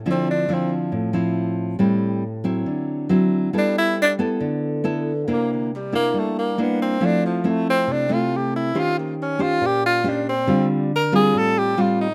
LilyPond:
<<
  \new Staff \with { instrumentName = "Tenor saxophone" } { \time 4/4 \key d \minor \tempo 4 = 138 c'8 d'8 c'8 r2 r8 | r1 | d'8 e'8 d'8 r2 r8 | bes8 d8 g8 bes8 a8 bes8 b8 c'8 |
d'8 f8 a8 c'8 d'8 f'8 g'8 e'8 | f'8 bes8 cis'8 f'8 g'8 f'8 d'8 c'8~ | c'8 r8 bes'8 gis'8 a'8 g'8 f'8 ees'8 | }
  \new Staff \with { instrumentName = "Nylon-string guitar" } { \time 4/4 \key d \minor << { <f c' e'>4 <f c' e'>4. <f c' e'>4. | <g c' e'>4 r8 <fis c' e'>4. <fis c' e'>4 | <b e' a'>4 r8 <b e' a'>4. <b e' a'>8 r8 | <bes d' e'>4 r8 <bes d' e'>4. <bes d' e'>4 |
<a c' e'>4 <a c' e'>4. <a c' e'>4. | <cis' g' c''>4. <cis' g' c''>4. <cis' g' c''>8 r8 | <g c' f'>4 r8 <g c' f'>4. <g c' f'>8 r8 | } \\ { d2 a,2 | a,2 d2 | g2 d2 | c2 g2 |
f2 c2 | ees2 bes,2 | d2 a,2 | } >> }
>>